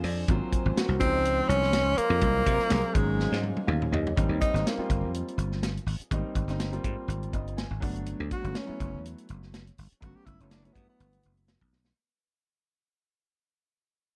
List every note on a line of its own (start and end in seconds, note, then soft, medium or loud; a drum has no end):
0.00 0.24 F2 medium
0.00 0.99 C5 medium
0.00 open hi-hat medium
0.04 0.27 D5 medium
0.28 0.39 G#1 loud
0.28 0.74 F#3 medium
0.28 0.74 A#3 medium
0.28 0.74 C4 medium
0.28 0.75 F4 medium
0.28 kick medium
0.28 closed hi-hat medium
0.53 muted slap bass stroke soft
0.53 kick medium
0.53 closed hi-hat medium
0.66 0.75 G#1 medium
0.76 1.01 F#3 medium
0.76 1.01 A#3 medium
0.76 1.01 C4 medium
0.76 1.01 F#4 medium
0.76 snare loud
0.76 closed hi-hat medium
0.89 0.98 C2 medium
0.98 1.41 C#2 medium
0.98 1.91 F3 medium
0.98 1.91 G#3 medium
0.98 1.50 C4 loud
0.98 1.92 D#4 medium
0.98 2.19 F4 medium
0.98 1.92 C5 medium
0.98 2.20 D#5 medium
0.98 2.19 C6 medium
0.98 kick medium
0.98 closed hi-hat medium
1.25 closed hi-hat medium
1.48 1.87 C2 medium
1.48 1.99 C#4 loud
1.48 closed hi-hat medium
1.62 snare soft
1.73 snare loud
1.73 closed hi-hat medium
1.87 1.96 C#2 medium
1.97 2.96 A#3 loud
1.97 muted slap bass stroke soft
1.97 closed hi-hat medium
2.10 2.20 F2 medium
2.20 2.42 C2 loud
2.20 4.14 F#3 medium
2.20 2.67 F#3 medium
2.20 2.67 A#3 medium
2.20 2.68 C4 medium
2.20 2.68 F4 medium
2.20 kick loud
2.20 closed hi-hat medium
2.46 2.57 C3 medium
2.46 kick medium
2.46 closed hi-hat medium
2.58 muted slap bass stroke soft
2.58 snare soft
2.69 2.82 C2 medium
2.69 2.92 F#3 medium
2.69 2.93 A#3 medium
2.69 2.95 C4 medium
2.69 2.95 G#4 medium
2.69 snare loud
2.69 closed hi-hat medium
2.92 3.26 G#1 medium
2.92 3.85 F#3 medium
2.92 3.43 G#3 medium
2.92 3.86 A#3 medium
2.92 3.86 C#4 medium
2.92 3.86 D#4 medium
2.92 4.14 C#5 medium
2.92 4.14 G#5 medium
2.92 kick medium
2.92 closed hi-hat medium
3.20 snare medium
3.32 3.52 G#2 medium
3.32 snare medium
3.43 high tom medium
3.57 high tom medium
3.67 3.88 D#2 medium
3.67 3.90 F5 medium
3.67 mid tom medium
3.82 mid tom medium
3.92 4.12 D#2 medium
3.92 4.15 D#5 medium
3.92 floor tom medium
4.07 floor tom medium
4.16 4.28 G#1 loud
4.16 4.51 G3 medium
4.16 4.51 A#3 medium
4.16 4.52 C4 medium
4.16 4.52 D#4 medium
4.16 kick medium
4.16 closed hi-hat medium
4.29 4.38 D#2 medium
4.41 4.69 D#4 medium
4.41 kick medium
4.41 closed hi-hat medium
4.54 4.63 G#1 medium
4.54 4.76 G3 medium
4.54 4.77 A#3 medium
4.54 4.77 C4 medium
4.54 4.77 D#4 medium
4.54 snare soft
4.54 closed hi-hat soft
4.67 5.15 A#3 medium
4.67 snare medium
4.67 closed hi-hat medium
4.78 5.68 G3 medium
4.78 5.68 A#3 medium
4.78 5.68 C4 medium
4.78 5.69 F4 medium
4.78 muted slap bass stroke soft
4.90 5.03 G1 medium
4.90 kick medium
4.90 closed hi-hat medium
5.01 5.22 F2 medium
5.14 closed hi-hat medium
5.28 closed hi-hat soft
5.38 5.78 G1 medium
5.38 closed hi-hat medium
5.52 snare soft
5.63 snare loud
5.63 closed hi-hat medium
5.77 closed hi-hat soft
5.86 5.97 G#1 medium
5.86 open hi-hat medium
6.01 closed hi-hat soft
6.11 6.22 G#1 medium
6.11 6.46 G3 medium
6.11 6.46 A#3 medium
6.11 6.46 C4 medium
6.11 6.47 D#4 medium
6.11 kick medium
6.11 closed hi-hat medium
6.35 6.47 G#1 medium
6.35 kick medium
6.35 closed hi-hat medium
6.48 6.77 G1 medium
6.48 6.70 G3 medium
6.48 6.71 A#3 medium
6.48 6.71 C4 medium
6.48 6.72 D#4 medium
6.48 snare soft
6.48 closed hi-hat soft
6.60 snare medium
6.60 closed hi-hat medium
6.72 7.63 G3 medium
6.72 7.63 A#3 medium
6.72 7.63 C4 medium
6.72 7.63 F4 medium
6.72 closed hi-hat soft
6.84 6.95 G#2 medium
6.84 kick medium
6.84 closed hi-hat medium
7.08 7.28 G#1 medium
7.08 closed hi-hat medium
7.23 closed hi-hat soft
7.33 7.64 G1 medium
7.33 7.56 D#5 medium
7.33 kick medium
7.33 closed hi-hat soft
7.48 closed hi-hat soft
7.57 7.80 G#5 medium
7.57 snare medium
7.57 closed hi-hat medium
7.70 7.80 G#1 medium
7.80 8.13 G1 medium
7.80 8.38 F#3 medium
7.80 8.38 A3 medium
7.80 8.39 B3 medium
7.80 8.39 D4 medium
7.80 8.04 F#5 medium
7.80 kick medium
7.80 open hi-hat medium
7.96 closed hi-hat soft
8.06 closed hi-hat medium
8.20 8.29 D2 medium
8.31 8.58 F#4 medium
8.31 kick medium
8.31 closed hi-hat medium
8.42 8.53 G1 medium
8.42 8.65 F#3 medium
8.42 8.65 A3 medium
8.42 8.66 B3 medium
8.42 8.67 C#4 medium
8.42 closed hi-hat soft
8.55 9.05 C#4 medium
8.55 snare loud
8.55 closed hi-hat medium
8.66 9.57 F#3 medium
8.66 9.58 A3 medium
8.66 9.58 B3 medium
8.66 9.58 E4 medium
8.66 muted slap bass stroke soft
8.80 8.96 F#1 medium
8.80 kick medium
8.80 closed hi-hat soft
8.94 9.14 E2 medium
9.05 closed hi-hat medium
9.18 closed hi-hat soft
9.29 9.69 F#1 medium
9.29 closed hi-hat medium
9.43 snare soft
9.54 snare medium
9.54 closed hi-hat medium
9.67 closed hi-hat soft
9.78 9.89 G1 medium
9.78 open hi-hat medium
9.92 muted slap bass stroke soft
9.92 closed hi-hat soft
10.00 10.13 G1 medium
10.00 10.36 F#3 medium
10.00 10.36 A3 medium
10.00 10.36 B3 medium
10.00 10.36 C#4 medium
10.00 10.17 F#4 medium
10.00 kick medium
10.00 closed hi-hat medium
10.16 10.27 G4 medium
10.26 10.37 G1 medium
10.26 10.43 E4 medium
10.26 kick medium
10.26 closed hi-hat soft
10.40 10.69 F#1 medium
10.40 10.62 F#3 medium
10.40 10.62 A3 medium
10.40 10.62 B3 medium
10.40 10.53 C#4 medium
10.40 10.63 E4 medium
10.40 closed hi-hat soft
10.51 10.66 D4 medium
10.51 snare medium
10.51 closed hi-hat medium
10.63 11.54 F#3 medium
10.63 11.54 A3 medium
10.63 11.54 B3 medium
10.63 10.75 C#4 medium
10.63 11.55 E4 medium
10.63 closed hi-hat soft
10.73 10.86 G2 medium
10.73 10.87 B3 medium
10.73 kick medium
10.73 closed hi-hat soft
10.89 11.34 B3 medium
11.00 11.20 G1 medium
11.00 closed hi-hat medium
11.13 closed hi-hat soft
11.23 11.56 F#1 medium
11.23 closed hi-hat soft
11.37 closed hi-hat soft
11.48 snare medium
11.48 closed hi-hat medium
11.61 11.91 B1 medium
11.61 kick medium
11.73 snare medium
11.85 snare medium